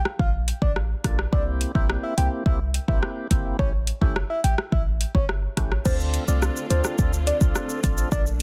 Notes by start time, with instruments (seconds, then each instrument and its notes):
0.05 cross-stick
0.19 808-style bass A#1, soft synth lead F5, kick
0.48 closed hi-hat
0.62 808-style bass A1, soft synth lead D5, kick
0.76 cross-stick
1.04 808-style bass A#1, tonewheel organ A#3 D4 F4 A4, kick, cross-stick, closed hi-hat
1.19 cross-stick
1.32 808-style bass C2, tonewheel organ A#3 C4 E4 G4, soft synth lead D5, kick
1.61 closed hi-hat
1.75 808-style bass A#1, tonewheel organ A#3 C4 E4 G4, soft synth lead E5, kick
1.90 cross-stick
2.03 soft synth lead E5
2.17 808-style bass C2, tonewheel organ A#3 C4 E4 G4, soft synth lead G5, closed hi-hat
2.46 808-style bass C2, tonewheel organ A#3 C4 E4 G4, soft synth lead E5, kick
2.74 closed hi-hat
2.88 808-style bass A#1, tonewheel organ A#3 C4 E4 G4, soft synth lead E5, kick
3.03 cross-stick
3.31 808-style bass G1, tonewheel organ A#3 C4 E4 G4, kick, closed hi-hat
3.59 808-style bass A1, tonewheel organ A3 C#4 E4 G4, soft synth lead C#5, kick
3.87 closed hi-hat
4.01 808-style bass G1, tonewheel organ A3 C#4 E4 G4, soft synth lead E5, kick
4.16 cross-stick
4.30 soft synth lead E5
4.44 808-style bass A1, soft synth lead G5, closed hi-hat
4.58 cross-stick
4.72 808-style bass A1, soft synth lead E5, kick
5.01 closed hi-hat
5.15 808-style bass G1, soft synth lead C#5, kick
5.29 cross-stick
5.57 808-style bass A1, tonewheel organ A3 C#4 E4 G4, kick, cross-stick, closed hi-hat
5.72 cross-stick
5.85 808-style bass D2, string section D3 A3 C4 F4, tonewheel organ C4 D4 F4 A4, soft synth lead C5, kick, crash, shaker
6.00 shaker
6.14 closed hi-hat, shaker
6.28 808-style bass C2, tonewheel organ C4 D4 F4 A4, soft synth lead D5, shaker
6.42 cross-stick, shaker
6.56 shaker
6.70 808-style bass D2, tonewheel organ C4 D4 F4 A4, soft synth lead C5, closed hi-hat, shaker
6.84 cross-stick, shaker
6.98 808-style bass D2, tonewheel organ C4 D4 F4 A4, kick, shaker
7.13 shaker
7.27 soft synth lead D5, closed hi-hat, shaker
7.41 808-style bass C2, tonewheel organ C4 D4 F4 A4, kick, shaker
7.55 cross-stick, shaker
7.69 shaker
7.83 808-style bass A1, tonewheel organ C4 D4 F4 A4, kick, closed hi-hat, shaker
7.98 shaker
8.12 808-style bass A#1, tonewheel organ A#3 D4 F4 A4, string section A#3 D4, soft synth lead D5, kick, shaker
8.27 shaker